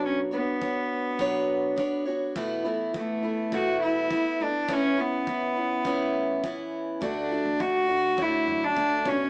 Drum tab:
BD |--o-o-o-|o-o-o-o-|o-o-o-o-|o-o-o-oo|